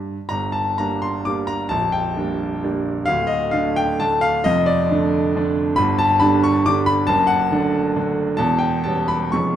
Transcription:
Already playing: G2
0.29 G1 G2 A#5
0.52 A5
0.78 G3 A#3 D4 A#5
1.02 C6
1.25 G3 A#3 D4 D6
1.47 A#5
1.69 A#0 A#1 A5
1.92 G5
2.16 G3 A#3 D4
2.63 G3 A#3 D4
3.06 D1 D2 F5
3.27 D#5
3.51 D3 A3 D4 F5
3.76 G5
4.00 D3 A3 D4 A5
4.21 F5
4.44 F1 F2 D#5
4.66 D5
4.91 D3 A3 D4
5.36 D3 A3 D4
5.76 G1 G2 B5
5.99 A5
6.20 D3 G3 D4 B5
6.44 C#6
6.66 D3 G3 D4 D6
6.86 B5
7.07 F#1 F#2 A5
7.27 F#5
7.51 D3 A3 D4
7.96 D3 A3 D4
8.37 E1 E2 A5
8.59 G5
8.84 G3 B3 C#4 A5
9.08 B5
9.32 F1 F2 G#3 B3 C#4 C#6

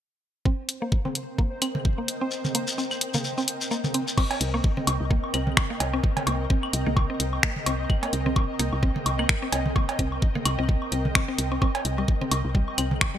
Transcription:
0.45 C4 C5, kick
0.69 closed hi-hat
0.82 A#3 A#4
0.92 kick
1.05 C4 G5, high tom
1.15 D#5, closed hi-hat
1.39 A#3, kick
1.62 C4, closed hi-hat, claves
1.75 high tom
1.85 kick
1.98 A#3
2.08 closed hi-hat
2.21 C4
2.31 shekere
2.45 high tom, shekere
2.55 A#3, closed hi-hat
2.67 shekere
2.78 C4, shekere
2.91 claves, shekere
3.01 closed hi-hat
3.14 A#3, high tom, shekere
3.24 shekere
3.38 C4, shekere
3.48 closed hi-hat
3.61 shekere
3.71 A#3, shekere
3.84 high tom, shekere
3.94 C4, closed hi-hat
4.08 shekere
4.18 C4 D#5, kick, crash, high woodblock
4.31 closed hi-hat, cowbell
4.41 C2, closed hi-hat
4.54 A#3, high woodblock
4.64 kick
4.77 C4, high tom
4.87 C2, closed hi-hat, high woodblock
5.00 C2
5.11 A#3, kick
5.24 high woodblock
5.34 C2 C4, closed hi-hat, claves
5.47 high tom
5.57 finger snap, kick, high woodblock
5.70 A#3
5.80 C2, closed hi-hat, cowbell
5.93 C4, high woodblock
6.04 kick
6.17 closed hi-hat, high tom, cowbell
6.27 C2 A#3, closed hi-hat, high woodblock
6.50 C4, kick
6.63 claves, high woodblock
6.73 C2, closed hi-hat
6.86 C2 A#3, high tom
6.97 kick, high woodblock
7.10 C4
7.20 C2, closed hi-hat
7.33 high woodblock
7.43 A#3, finger snap, kick
7.56 high tom
7.66 C2 C4, closed hi-hat, high woodblock
7.90 kick, claves
8.03 A#3, closed hi-hat, cowbell, high woodblock
8.13 C2, closed hi-hat
8.26 C4, high tom
8.36 kick, high woodblock
8.59 C2 A#3, closed hi-hat
8.73 C2, high woodblock
8.83 C4, kick
8.96 high tom
9.06 C2, closed hi-hat, high woodblock
9.19 A#3, claves
9.29 finger snap, kick
9.42 C4, high woodblock
9.52 C2, closed hi-hat, cowbell
9.66 high tom
9.76 A#3, kick, high woodblock
9.89 closed hi-hat, cowbell
9.99 C2 C4, kick, closed hi-hat
10.12 high woodblock
10.22 kick
10.35 A#3, high tom
10.45 C2, closed hi-hat, claves, high woodblock
10.59 C2 C4
10.69 kick
10.82 high woodblock
10.92 C2 C4, closed hi-hat
11.05 high tom
11.15 C4, finger snap, kick, high woodblock
11.28 C4
11.38 C2, closed hi-hat
11.52 C4, high woodblock
11.62 C4, kick, high woodblock
11.75 closed hi-hat, cowbell
11.85 C2, closed hi-hat
11.98 G3, high woodblock
12.08 kick
12.21 C4, high tom
12.31 C2, closed hi-hat, high woodblock
12.45 C2
12.55 G3, kick
12.68 high woodblock
12.78 C2 C4, closed hi-hat, claves
12.91 high tom
13.01 finger snap, kick, high woodblock
13.14 G3

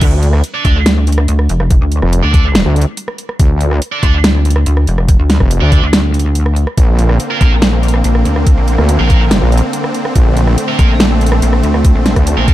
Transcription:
0.01 D2, kick, closed hi-hat, crash
0.23 closed hi-hat
0.33 cross-stick
0.44 closed hi-hat
0.54 D4 A4 D5
0.65 D2 D4 A4 D5, kick, closed hi-hat
0.86 snare, closed hi-hat
1.07 closed hi-hat
1.12 closed hi-hat
1.18 cross-stick
1.28 D2, closed hi-hat
1.39 cross-stick
1.49 F1, closed hi-hat
1.60 cross-stick
1.71 kick, closed hi-hat
1.81 D2
1.92 closed hi-hat
2.02 F1, cross-stick
2.13 closed hi-hat
2.23 D2 D4 A4 D5
2.34 D4 A4 D5, kick, closed hi-hat
2.55 snare, closed hi-hat
2.66 D2
2.76 closed hi-hat
2.81 closed hi-hat
2.97 closed hi-hat
3.08 cross-stick
3.18 closed hi-hat
3.29 cross-stick
3.39 D2, kick, closed hi-hat
3.61 closed hi-hat
3.71 cross-stick
3.82 closed hi-hat
3.92 D4 A4 D5
4.03 D2 D4 A4 D5, kick, closed hi-hat
4.24 snare, closed hi-hat
4.45 closed hi-hat
4.50 closed hi-hat
4.56 cross-stick
4.66 D2, closed hi-hat
4.77 cross-stick
4.87 F1, closed hi-hat
4.98 cross-stick
5.08 kick, closed hi-hat
5.19 D2
5.30 snare, closed hi-hat
5.40 F1, kick, cross-stick
5.51 closed hi-hat
5.61 D2 D4 A4 D5
5.72 D4 A4 D5, kick, closed hi-hat
5.83 D2
5.93 snare, closed hi-hat
6.14 closed hi-hat
6.19 closed hi-hat
6.35 closed hi-hat
6.46 cross-stick
6.56 closed hi-hat
6.67 cross-stick
6.78 A#1 D3 A#3 C4, kick, closed hi-hat
6.99 closed hi-hat
7.09 cross-stick
7.20 closed hi-hat
7.30 A#3 F4 A#4
7.41 A#1 A#3 F4 A#4, kick, closed hi-hat
7.62 snare, closed hi-hat
7.83 closed hi-hat
7.88 closed hi-hat
7.94 cross-stick
8.04 A#1, closed hi-hat
8.15 cross-stick
8.25 D2, closed hi-hat
8.36 cross-stick
8.47 kick, closed hi-hat
8.57 A#1
8.68 closed hi-hat
8.78 D2, cross-stick
8.89 closed hi-hat
8.99 A#1 A#3 F4 A#4
9.10 A#3 F4 A#4, kick, closed hi-hat
9.31 snare, closed hi-hat
9.42 A#1
9.52 closed hi-hat
9.58 closed hi-hat
9.73 closed hi-hat
9.84 cross-stick
9.94 closed hi-hat
10.05 cross-stick
10.16 A#1 A3, kick, closed hi-hat
10.37 closed hi-hat
10.47 cross-stick
10.58 closed hi-hat
10.68 A#3 F4 A#4
10.79 A#1 A#3 F4 A#4, kick, closed hi-hat
11.00 snare, closed hi-hat
11.21 closed hi-hat
11.27 closed hi-hat
11.32 cross-stick
11.42 A#1, closed hi-hat
11.53 cross-stick
11.63 D2, closed hi-hat
11.74 cross-stick
11.85 kick, closed hi-hat
11.95 A#1
12.06 snare, closed hi-hat
12.16 D2, kick, cross-stick, closed hi-hat
12.27 closed hi-hat
12.37 A#1 A#3 F4 A#4
12.48 A#3 F4 A#4, kick, closed hi-hat

